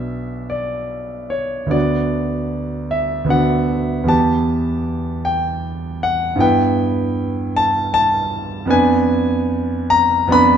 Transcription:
Already playing: B1 B3 D4 F#4 E5
0.50 D5
1.30 C#5
1.66 D2 B3 D4
1.71 F#4 D5
2.91 E5
3.24 D2 B3
3.29 D4 F#4 F#5
4.04 E2 B3 G4
4.08 B4 A5
5.25 G5
6.03 F#5
6.36 G2 B3 E4
6.40 B4 G5
7.56 A5
7.94 A5
8.66 F2 B3 D4
8.70 B4 G#5
9.90 A#5
10.27 F2 B3 D4
10.32 B4 B5

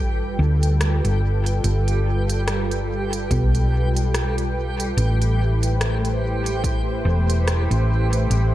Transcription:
Already playing: G1 G3 F4 G4 A4 B4 G5
0.39 D2
0.63 closed hi-hat
0.81 cross-stick, closed hi-hat
1.04 G1, closed hi-hat
1.46 closed hi-hat
1.64 G1, closed hi-hat
1.88 closed hi-hat
2.30 closed hi-hat
2.48 cross-stick, closed hi-hat
2.71 closed hi-hat
3.13 closed hi-hat
3.31 B1, kick, closed hi-hat
3.55 closed hi-hat
3.97 closed hi-hat
4.14 cross-stick, closed hi-hat
4.38 closed hi-hat
4.80 closed hi-hat
4.97 A1 A3, closed hi-hat
5.21 E4, closed hi-hat
5.63 closed hi-hat
5.67 C5
5.81 cross-stick, closed hi-hat
6.05 closed hi-hat
6.46 closed hi-hat
6.64 kick, closed hi-hat
7.05 E1
7.30 closed hi-hat
7.48 cross-stick, closed hi-hat
7.71 A1, closed hi-hat
8.13 closed hi-hat
8.30 A1, closed hi-hat

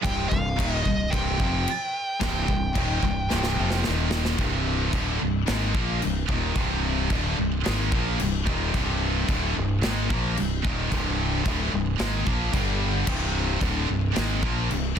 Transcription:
0.03 C1 C2 G2 C3 G5, kick, crash
0.29 C1 C2 G2 F5, kick
0.59 D#1 D#2 A#2 D#3, kick, crash
0.74 D#5
0.83 C1 C2 D#5, kick
0.87 G2
1.10 C1 C2 G2 G5, kick, crash
1.15 C3
1.39 F1 F2 C3 F3, kick
1.68 crash
2.21 C1 C2 G2 C3, kick, snare, crash
2.48 C1 C2 G2, kick
2.75 D#1 D#2 A#2 D#3, kick, crash
3.03 C1 C2 G2, kick
3.30 C1 C2 G2 C3, snare
3.44 snare
3.59 F1 F2 C3 F3
3.70 snare
3.84 D#1 D#2 A#2 D#3, snare
4.11 snare
4.25 snare
4.38 C1 C2 G2 C3, kick, china
4.92 D1 D2 A2 D3, kick, china
5.19 C1 C2 G2
5.47 G#1 G#2 D#3 G#3, snare, china
5.74 A#1 A#2 F3 A#3, kick
6.01 C1 C2 G2, china
6.27 D#1 D#2 A#2 D#3, kick
6.55 C1 C2 G2 C3, kick, china
7.10 D1 D2 A2 D3, kick, china
7.37 C1 C2 G2
7.63 G#2 D#3 G#3, snare, china
7.68 G#1
7.90 A#1 A#2 F3 A#3, kick
8.19 C1 C2 G2, china
8.46 D#1 D#2 A#2 D#3, kick
8.73 C1 C2 G2 C3, kick, china
9.28 D1 D2 A2 D3, kick, china
9.55 C1 C2 G2
9.81 G#1 G#2 D#3 G#3, snare, china
10.08 A#1 A#2 F3 A#3, kick
10.34 C2 G2, china
10.38 C1 C2
10.62 D#1 D#2 A#2 D#3, kick
10.89 C1 C2 G2 C3, kick, china
11.43 D1 D2 A2 D3, kick, china
11.72 C1 C2 G2
11.98 G#1 G#2 D#3 G#3, snare, china
12.26 A#1 A#2 F3 A#3, kick
12.51 G1 G2 D3 G3, kick, china
13.06 C1 C2 G2 C3, kick, china, crash
13.60 D1 D2 A2 D3, kick, china
13.86 C1 C2 G2
14.14 G#1 G#2 D#3 G#3, snare, china
14.41 A#1 A#2 F3 A#3, kick
14.69 C1 C2 G2, china
14.95 D#2

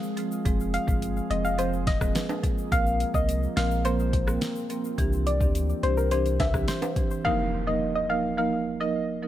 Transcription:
Already playing: F3 G#3 C4 G#4
0.03 shaker
0.17 F3 G#3 C4 G#4, closed hi-hat, shaker
0.32 shaker
0.45 F1 F3 G#3 A#3 C4 G#4, kick, closed hi-hat, shaker
0.60 shaker
0.74 F5, closed hi-hat, shaker
0.88 G1 F3 G#3 C4 G#4, kick, shaker
1.02 closed hi-hat, shaker
1.17 shaker
1.30 F1 F3 G#3 C4 G#4 D#5, closed hi-hat
1.45 F5, shaker
1.58 F3 G#3 C4 G#4 C5, closed hi-hat, shaker
1.73 shaker
1.87 D#5, kick, snare, closed hi-hat
2.01 F3 G#3 C4 G#4, kick, cross-stick, shaker
2.15 snare, closed hi-hat, high timbale, shaker
2.29 high timbale, shaker
2.43 F3 G#3 C4 G#4, kick, closed hi-hat, shaker
2.58 shaker
2.72 A#1 F3 A#3 C4 A#4 F5, kick, closed hi-hat, shaker
2.86 shaker
3.00 closed hi-hat, shaker
3.14 C2 F3 A#3 C4 A#4 D#5, kick, shaker
3.29 closed hi-hat, shaker
3.43 shaker
3.56 A#1 F3 A#3 C4 A#4 F5, snare, closed hi-hat
3.71 shaker
3.85 F3 A#3 C4 A#4 C5, closed hi-hat, shaker
3.99 shaker
4.13 kick, closed hi-hat
4.27 F3 A#3 C4 A#4, cross-stick, shaker
4.41 snare, closed hi-hat, shaker
4.56 shaker
4.70 F3 A#3 C4 A#4, closed hi-hat, shaker
4.84 shaker
4.98 C2 E3 C4 D4 G4, kick, closed hi-hat, shaker
5.13 shaker
5.27 D5, closed hi-hat, shaker
5.41 D2 E3 C4 D4 G4, kick, shaker
5.55 closed hi-hat, shaker
5.69 shaker
5.83 C2 E3 C4 D4 G4 C5, closed hi-hat
5.97 A#4, shaker
6.11 E3 C4 D4 G4 C5, closed hi-hat, shaker
6.26 closed hi-hat, shaker
6.40 E5, kick, snare, closed hi-hat, high timbale
6.54 E3 C4 D4 G4, kick, cross-stick, shaker
6.68 C5, snare, closed hi-hat, shaker
6.82 closed hi-hat, high timbale, shaker
6.96 E3 C4 D4 G4, kick, closed hi-hat, shaker
7.11 shaker
7.25 F3 A#3 D#4 A#4 F5, impact
7.67 F3 A#3 D#4 A#4 D#5
7.95 D#5
8.09 F3 A#3 D#4 A#4 F5
8.38 F3 A#3 D#4 A#4 F5
8.80 F3 A#3 D#4 A#4 D#5
9.23 F3 A#3 D#4 A#4

